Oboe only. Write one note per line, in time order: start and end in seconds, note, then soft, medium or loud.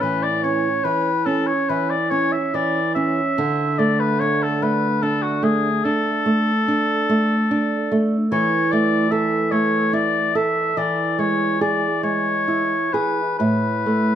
0.01 0.24 B4 medium
0.23 0.45 D5 medium
0.43 0.86 C#5 medium
0.84 1.27 B4 medium
1.25 1.48 A4 medium
1.47 1.71 C#5 medium
1.69 1.92 B4 medium
1.90 2.11 D5 medium
2.10 2.34 C#5 medium
2.32 2.56 E5 medium
2.55 2.95 D5 medium
2.95 3.80 E5 medium
3.79 4.01 D5 medium
4.00 4.21 B4 medium
4.20 4.44 C#5 medium
4.43 4.64 A4 medium
4.62 5.04 B4 medium
5.02 5.24 A4 medium
5.22 5.45 F#4 medium
5.44 5.86 G#4 medium
5.85 8.05 A4 medium
8.32 8.73 C#5 medium
8.71 9.13 D5 medium
9.11 9.53 E5 medium
9.51 9.95 C#5 medium
9.93 10.37 D5 medium
10.35 10.79 E5 medium
10.77 11.20 D5 medium
11.19 11.60 C#5 medium
11.61 12.03 D5 medium
12.03 12.95 C#5 medium
12.93 13.38 B4 medium
13.39 14.15 B4 medium